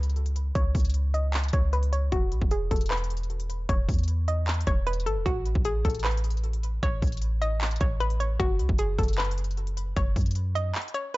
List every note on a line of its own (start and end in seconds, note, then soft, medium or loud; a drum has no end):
0.00 0.51 C#2 loud
0.00 0.51 B4 medium
0.00 closed hi-hat medium
0.10 closed hi-hat soft
0.16 closed hi-hat soft
0.26 closed hi-hat medium
0.36 closed hi-hat medium
0.55 0.74 C#2 loud
0.55 1.11 C#5 loud
0.55 kick loud
0.55 closed hi-hat medium
0.75 1.50 C#2 loud
0.75 kick medium
0.75 closed hi-hat soft
0.75 open hi-hat medium
0.80 closed hi-hat medium
0.85 closed hi-hat medium
0.90 closed hi-hat medium
0.94 closed hi-hat medium
1.14 1.51 D#5 medium
1.14 closed hi-hat medium
1.34 clap loud
1.34 closed hi-hat soft
1.39 closed hi-hat medium
1.44 closed hi-hat medium
1.48 closed hi-hat medium
1.53 2.10 C#2 loud
1.53 1.71 C#5 medium
1.53 kick medium
1.53 closed hi-hat medium
1.73 1.90 B4 medium
1.73 closed hi-hat medium
1.83 closed hi-hat medium
1.93 2.10 C#5 medium
1.93 closed hi-hat medium
2.12 2.33 E1 loud
2.12 2.49 F#4 loud
2.12 kick loud
2.12 closed hi-hat medium
2.32 2.41 B1 loud
2.32 closed hi-hat medium
2.42 2.70 E1 loud
2.42 kick medium
2.51 2.69 G#4 medium
2.51 closed hi-hat medium
2.71 3.65 E1 loud
2.71 2.88 A4 medium
2.71 kick medium
2.71 closed hi-hat medium
2.76 closed hi-hat medium
2.81 closed hi-hat medium
2.86 closed hi-hat medium
2.91 3.65 B4 medium
2.91 clap loud
2.91 closed hi-hat soft
2.97 closed hi-hat medium
3.04 closed hi-hat medium
3.10 closed hi-hat medium
3.17 closed hi-hat medium
3.23 closed hi-hat soft
3.30 closed hi-hat soft
3.40 closed hi-hat medium
3.50 closed hi-hat medium
3.69 3.88 E1 loud
3.69 4.24 C#5 medium
3.69 kick loud
3.69 closed hi-hat medium
3.89 4.64 E2 loud
3.89 kick medium
3.89 closed hi-hat soft
3.89 open hi-hat medium
3.94 closed hi-hat soft
3.98 closed hi-hat medium
4.03 closed hi-hat medium
4.08 closed hi-hat medium
4.28 4.65 D#5 medium
4.28 closed hi-hat medium
4.47 clap loud
4.47 closed hi-hat soft
4.54 closed hi-hat medium
4.61 closed hi-hat medium
4.67 5.08 E1 loud
4.67 4.84 C#5 medium
4.67 kick loud
4.67 closed hi-hat medium
4.87 5.04 B4 medium
4.87 closed hi-hat medium
4.93 closed hi-hat medium
5.00 closed hi-hat medium
5.06 5.18 G#1 loud
5.06 5.24 A4 medium
5.06 closed hi-hat medium
5.16 5.25 E1 loud
5.26 5.54 A1 loud
5.26 5.63 F#4 loud
5.26 kick loud
5.26 closed hi-hat medium
5.46 closed hi-hat medium
5.55 5.83 A1 loud
5.55 kick loud
5.65 5.82 G#4 medium
5.65 closed hi-hat medium
5.85 6.79 A1 loud
5.85 6.02 A4 medium
5.85 kick medium
5.85 closed hi-hat medium
5.90 closed hi-hat medium
5.95 closed hi-hat medium
5.99 closed hi-hat medium
6.04 6.79 B4 medium
6.04 clap loud
6.04 closed hi-hat soft
6.11 closed hi-hat medium
6.17 closed hi-hat medium
6.24 closed hi-hat medium
6.30 closed hi-hat medium
6.37 closed hi-hat soft
6.44 closed hi-hat soft
6.53 closed hi-hat medium
6.63 closed hi-hat medium
6.83 7.02 A1 loud
6.83 7.38 C#5 loud
6.83 kick loud
6.83 closed hi-hat medium
7.02 7.78 A1 loud
7.02 kick medium
7.02 closed hi-hat soft
7.02 open hi-hat medium
7.07 closed hi-hat soft
7.12 closed hi-hat medium
7.17 closed hi-hat medium
7.22 closed hi-hat medium
7.42 7.78 D#5 medium
7.42 closed hi-hat medium
7.61 clap loud
7.61 closed hi-hat soft
7.66 closed hi-hat medium
7.71 closed hi-hat medium
7.76 closed hi-hat medium
7.81 8.37 A1 loud
7.81 7.98 C#5 medium
7.81 kick loud
7.81 closed hi-hat medium
8.00 8.18 B4 medium
8.00 closed hi-hat medium
8.10 closed hi-hat medium
8.20 8.37 C#5 medium
8.20 closed hi-hat medium
8.40 8.61 F#1 loud
8.40 8.76 F#4 loud
8.40 kick loud
8.40 closed hi-hat medium
8.59 8.69 C#2 loud
8.59 closed hi-hat medium
8.69 8.97 F#1 loud
8.69 kick loud
8.78 8.96 G#4 medium
8.78 closed hi-hat medium
8.99 9.93 F#1 loud
8.99 9.16 A4 medium
8.99 kick medium
8.99 closed hi-hat medium
9.03 closed hi-hat medium
9.08 closed hi-hat medium
9.13 closed hi-hat medium
9.18 9.92 B4 medium
9.18 clap loud
9.18 closed hi-hat soft
9.25 closed hi-hat medium
9.31 closed hi-hat medium
9.38 closed hi-hat medium
9.44 closed hi-hat medium
9.51 closed hi-hat soft
9.57 closed hi-hat soft
9.67 closed hi-hat medium
9.77 closed hi-hat medium
9.96 10.15 F#1 loud
9.96 10.52 C#5 medium
9.96 kick loud
9.96 closed hi-hat medium
10.16 10.73 F#2 loud
10.16 kick medium
10.16 closed hi-hat soft
10.16 open hi-hat medium
10.21 closed hi-hat medium
10.26 closed hi-hat medium
10.31 closed hi-hat medium
10.35 closed hi-hat medium
10.55 10.92 D#5 medium
10.55 closed hi-hat medium
10.75 clap loud
10.75 closed hi-hat soft
10.81 closed hi-hat medium
10.88 closed hi-hat medium
10.94 11.12 C#5 medium
10.94 closed hi-hat medium